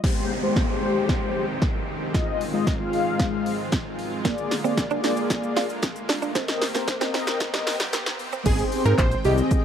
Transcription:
0.03 4.21 D#3 medium
0.03 0.32 G#3 medium
0.03 6.32 G#3 medium
0.03 4.21 C4 medium
0.03 0.32 G4 medium
0.03 2.12 G4 medium
0.03 0.32 C5 medium
0.03 kick loud
0.03 snare medium
0.03 crash medium
0.03 downlifter medium
0.03 riser medium
0.43 0.62 G#3 medium
0.43 0.62 G4 medium
0.43 0.62 C5 loud
0.56 kick loud
0.56 snare medium
0.69 1.45 G#3 medium
0.69 1.45 G4 medium
0.69 1.45 C5 medium
1.09 kick loud
1.09 snare medium
1.62 kick loud
1.62 snare medium
2.14 4.23 G#2 medium
2.14 2.43 G#3 medium
2.14 6.31 F4 medium
2.14 2.43 F4 medium
2.14 2.43 D#5 medium
2.14 kick loud
2.14 snare medium
2.14 closed hi-hat medium
2.41 open hi-hat medium
2.53 2.73 G#3 medium
2.53 2.73 F4 medium
2.53 2.73 D#5 loud
2.67 kick loud
2.67 snare medium
2.67 closed hi-hat medium
2.80 3.56 G#3 medium
2.80 3.56 F4 medium
2.80 3.56 F5 medium
2.93 open hi-hat medium
3.19 kick loud
3.19 snare medium
3.19 closed hi-hat medium
3.46 open hi-hat medium
3.72 kick loud
3.72 snare medium
3.72 closed hi-hat medium
3.99 open hi-hat medium
4.25 6.33 D3 medium
4.25 4.53 A#3 medium
4.25 4.33 A#3 medium
4.25 8.42 A#3 medium
4.25 4.53 G#4 medium
4.25 4.54 D5 medium
4.25 kick loud
4.25 snare medium
4.25 closed hi-hat medium
4.25 shaker medium
4.38 shaker soft
4.51 muted clean electric guitar stroke soft
4.51 snare medium
4.51 open hi-hat medium
4.51 shaker medium
4.64 4.83 A#3 medium
4.64 4.73 C4 medium
4.64 4.83 G#4 medium
4.64 4.83 D5 loud
4.64 shaker medium
4.77 muted clean electric guitar stroke soft
4.77 kick loud
4.77 snare medium
4.77 closed hi-hat medium
4.77 shaker medium
4.90 5.66 A#3 medium
4.90 4.99 D4 medium
4.90 5.67 G#4 medium
4.90 5.67 D5 medium
4.90 shaker soft
5.04 5.13 D4 medium
5.04 snare medium
5.04 open hi-hat medium
5.04 shaker medium
5.17 shaker medium
5.30 kick loud
5.30 snare medium
5.30 closed hi-hat medium
5.30 shaker medium
5.43 shaker soft
5.57 5.65 F4 medium
5.57 snare medium
5.57 open hi-hat medium
5.57 shaker medium
5.69 shaker medium
5.82 muted clean electric guitar stroke soft
5.82 kick loud
5.82 snare loud
5.82 closed hi-hat medium
5.82 shaker medium
5.96 shaker medium
6.09 6.18 D4 medium
6.09 snare loud
6.09 open hi-hat medium
6.09 shaker medium
6.22 6.31 D4 medium
6.22 shaker medium
6.35 8.44 D#3 medium
6.35 6.64 C4 medium
6.35 6.44 C4 medium
6.35 8.44 C4 medium
6.35 8.44 G4 medium
6.35 6.64 A#4 medium
6.35 6.64 D#5 medium
6.35 kick loud
6.35 snare loud
6.35 closed hi-hat medium
6.35 shaker medium
6.48 snare loud
6.48 shaker medium
6.62 muted clean electric guitar stroke soft
6.62 snare loud
6.62 open hi-hat medium
6.62 shaker medium
6.74 6.84 A#3 medium
6.74 6.94 C4 medium
6.74 6.94 A#4 medium
6.74 6.94 C5 loud
6.74 snare loud
6.74 shaker medium
6.88 muted clean electric guitar stroke soft
6.88 kick loud
6.88 snare loud
6.88 closed hi-hat medium
6.88 shaker medium
7.01 7.77 C4 medium
7.01 7.10 C4 medium
7.01 7.77 A#4 medium
7.01 7.77 D#5 loud
7.01 snare loud
7.01 shaker soft
7.14 7.23 C4 medium
7.14 snare loud
7.14 open hi-hat medium
7.14 shaker medium
7.27 snare loud
7.27 shaker medium
7.40 kick loud
7.40 snare loud
7.40 closed hi-hat medium
7.40 shaker medium
7.54 7.62 G3 medium
7.54 snare loud
7.54 shaker medium
7.67 muted clean electric guitar stroke soft
7.67 snare loud
7.67 open hi-hat medium
7.67 shaker medium
7.80 7.89 G3 medium
7.80 snare loud
7.80 shaker medium
7.93 8.02 A#3 medium
7.93 snare loud
7.93 closed hi-hat medium
7.93 shaker medium
8.06 muted clean electric guitar stroke soft
8.06 snare loud
8.06 shaker medium
8.19 open hi-hat medium
8.19 shaker medium
8.32 8.41 C4 medium
8.32 shaker medium
8.46 8.63 G#1 loud
8.46 9.65 D#3 medium
8.46 9.65 G#3 medium
8.46 8.55 C4 medium
8.46 9.65 C4 medium
8.46 8.55 G4 medium
8.46 8.65 G#4 loud
8.46 8.56 G#4 medium
8.46 8.56 D#5 medium
8.46 9.65 G5 medium
8.46 kick loud
8.46 closed hi-hat medium
8.46 crash loud
8.46 shaker medium
8.59 9.06 C4 medium
8.59 9.07 G4 medium
8.59 9.07 G#4 medium
8.59 9.07 C5 medium
8.59 closed hi-hat soft
8.59 shaker medium
8.72 open hi-hat medium
8.72 shaker medium
8.85 8.94 G#2 loud
8.85 8.95 A#4 medium
8.85 shaker medium
8.98 9.16 A#1 loud
8.98 9.18 C5 medium
8.98 kick loud
8.98 clap loud
8.98 closed hi-hat medium
8.98 shaker medium
9.12 closed hi-hat soft
9.12 shaker soft
9.25 9.42 C2 loud
9.25 9.65 C4 medium
9.25 9.65 G4 medium
9.25 9.34 G4 medium
9.25 9.65 G#4 medium
9.25 9.65 D#5 medium
9.25 open hi-hat medium
9.25 shaker medium
9.38 closed hi-hat medium
9.38 shaker medium
9.51 kick loud
9.51 closed hi-hat medium
9.51 shaker medium

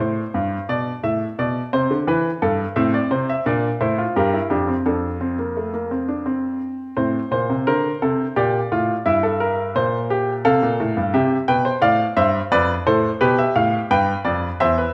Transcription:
0.00 0.21 A2 medium
0.00 0.67 C5 medium
0.34 0.56 G2 medium
0.69 0.91 B2 medium
0.69 0.91 D5 medium
1.03 1.25 A2 medium
1.03 1.25 E5 medium
1.39 1.60 B2 medium
1.39 1.60 D5 medium
1.73 1.90 C3 medium
1.73 1.94 C5 medium
1.91 2.07 D3 medium
2.07 2.29 E3 medium
2.07 2.29 B4 medium
2.42 2.64 G2 medium
2.42 2.63 A4 medium
2.76 2.98 A2 medium
2.76 3.43 C4 medium
2.76 2.93 E5 medium
2.94 3.11 D5 medium
3.11 3.32 C3 medium
3.11 3.28 C5 medium
3.29 3.46 E5 medium
3.46 3.67 A#2 medium
3.46 3.67 D4 medium
3.46 3.67 D5 medium
3.81 4.02 A2 medium
3.81 3.97 E4 medium
3.81 4.02 C5 medium
3.98 4.15 F4 medium
4.16 4.38 G2 medium
4.16 4.33 G4 medium
4.16 4.37 A#4 medium
4.34 4.50 E4 medium
4.50 4.72 F2 medium
4.50 4.67 D4 medium
4.50 4.72 G4 medium
4.68 4.85 C4 medium
4.86 6.58 F2 medium
4.86 5.07 D4 medium
4.86 6.58 A4 medium
5.21 5.38 C4 soft
5.39 5.55 A#3 soft
5.57 5.73 A3 medium
5.73 5.90 A#3 medium
5.91 6.08 C4 medium
6.08 6.25 D4 medium
6.26 6.94 C4 medium
6.97 7.18 A2 medium
6.97 7.18 C4 medium
6.97 7.30 C5 medium
7.31 7.48 A#2 medium
7.31 7.53 C5 medium
7.50 7.66 C3 medium
7.67 7.89 D3 medium
7.67 7.89 A#4 medium
7.67 8.35 C5 medium
8.02 8.24 C3 medium
8.02 8.24 A4 medium
8.36 8.58 A#2 medium
8.36 8.58 G4 medium
8.36 9.04 D5 medium
8.72 8.93 A2 medium
8.72 8.93 F4 medium
9.06 9.74 G2 medium
9.06 9.23 E4 medium
9.06 10.41 E5 medium
9.23 9.40 A4 medium
9.40 9.62 A#4 medium
9.75 10.43 A#2 medium
9.75 9.97 C5 medium
10.10 10.32 G4 medium
10.45 10.62 C3 medium
10.45 11.12 A4 medium
10.45 11.12 F5 medium
10.63 10.79 A#2 medium
10.80 10.97 A2 medium
10.97 11.14 G2 medium
11.14 11.35 C3 medium
11.14 11.35 G4 medium
11.14 11.35 E5 medium
11.48 11.70 B2 medium
11.48 11.65 B4 medium
11.48 11.70 G5 medium
11.65 11.82 C5 medium
11.82 12.04 A2 medium
11.82 12.03 D5 medium
11.82 12.04 F5 medium
12.17 12.38 G2 medium
12.17 12.38 C5 medium
12.17 12.38 E5 medium
12.52 12.73 F2 medium
12.52 12.73 B4 medium
12.52 12.73 D5 loud
12.87 13.08 A2 medium
12.87 13.08 A4 medium
12.87 13.08 C5 medium
13.21 13.43 B2 medium
13.21 13.88 G4 medium
13.21 13.38 B4 medium
13.38 13.55 E5 medium
13.56 13.77 A2 medium
13.56 13.77 F5 medium
13.91 14.12 G2 medium
13.91 14.58 B4 medium
13.91 14.12 G5 medium
14.25 14.47 F2 medium
14.25 14.46 D5 medium
14.60 14.82 E2 medium
14.60 14.77 C5 medium
14.60 14.93 E5 medium
14.78 14.93 B4 medium

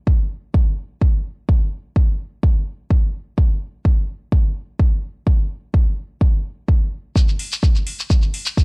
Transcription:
0.07 kick loud
0.54 kick loud
1.02 kick medium
1.49 kick loud
1.96 kick medium
2.43 kick loud
2.90 kick medium
3.38 kick loud
3.85 kick medium
4.32 kick loud
4.79 kick medium
5.27 kick loud
5.74 kick medium
6.21 kick loud
6.68 kick medium
7.16 kick loud
7.16 shekere medium
7.28 shekere soft
7.39 open hi-hat medium
7.52 shekere medium
7.63 kick loud
7.63 shekere medium
7.75 shekere soft
7.87 open hi-hat medium
8.00 shekere medium
8.10 kick loud
8.10 shekere medium
8.22 shekere soft
8.34 open hi-hat medium
8.46 shekere medium
8.57 kick loud
8.57 shekere medium

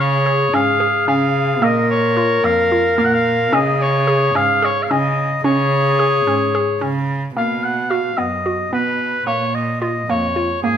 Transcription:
0.00 0.45 C#3 medium
0.00 0.13 C#4 medium
0.00 1.65 G#4 medium
0.00 0.55 C#5 medium
0.26 0.47 G#4 medium
0.53 0.78 G#2 medium
0.53 0.74 C#4 medium
0.53 1.07 F5 medium
0.80 1.01 G#4 medium
1.08 1.63 C#3 medium
1.08 1.49 C#4 medium
1.08 1.65 F5 medium
1.62 2.35 A#2 loud
1.62 2.03 A#3 medium
1.62 3.55 A#4 medium
1.62 1.90 D#5 medium
1.90 2.46 C#5 medium
2.17 2.37 F4 medium
2.43 2.68 F2 medium
2.43 2.65 A#3 medium
2.43 2.97 F5 medium
2.72 2.92 F4 medium
2.97 3.55 A#2 medium
2.97 3.39 A#3 medium
2.97 3.06 F5 medium
3.04 3.15 F#5 medium
3.13 3.55 F5 medium
3.53 4.27 C#3 medium
3.53 3.94 C#4 medium
3.53 5.17 G#4 medium
3.53 3.83 D#5 medium
3.82 4.37 C#5 medium
4.07 4.28 G#4 medium
4.35 4.60 G#2 medium
4.35 4.56 C#4 medium
4.35 4.66 F5 medium
4.62 4.83 G#4 medium
4.62 4.84 C#5 medium
4.83 4.92 F5 medium
4.90 5.39 C#3 medium
4.90 5.32 C#4 medium
4.90 5.43 D#5 medium
5.44 6.18 C#3 loud
5.44 5.86 C#4 medium
5.44 7.04 G#4 loud
5.44 7.04 C#5 medium
5.99 6.20 G#4 medium
6.26 6.51 G#2 medium
6.26 6.48 C#4 medium
6.55 6.75 G#4 medium
6.81 7.30 C#3 medium
6.81 7.22 C#4 medium
7.36 8.09 B2 medium
7.36 7.78 A#3 medium
7.36 7.65 F5 medium
7.63 7.91 F#5 medium
7.89 8.11 F#4 medium
7.89 8.19 F5 medium
8.17 8.67 F#2 medium
8.17 8.38 B3 medium
8.17 8.72 D#5 medium
8.46 8.66 F#4 medium
8.72 9.22 B2 medium
8.72 9.14 B3 medium
8.72 9.24 B4 medium
9.26 10.01 A#2 medium
9.26 9.68 A#3 medium
9.26 9.56 C#5 medium
9.54 9.80 D#5 medium
9.81 10.02 F4 medium
9.81 10.11 D#5 medium
10.09 10.58 F2 medium
10.09 10.30 A#3 medium
10.09 10.62 C#5 medium
10.36 10.57 F4 medium
10.62 10.77 G#2 medium
10.62 10.77 A#3 medium
10.62 10.77 G#4 medium

